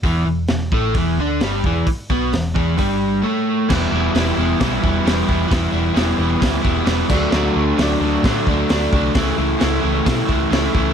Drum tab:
CC |--------|--------|x-------|-------x|
HH |o-o-o-o-|o-o-o---|--o-o-o-|o-o-o-o-|
SD |--o---o-|--o-----|o-o-o-o-|o-o-o-o-|
BD |o--oo--o|oo-oo---|o---oo-o|o---oo-o|

CC |--------|--------|
HH |--o-o-o-|o-o-o-o-|
SD |o-o-o-o-|o-o-o-o-|
BD |----oo-o|o---oo-o|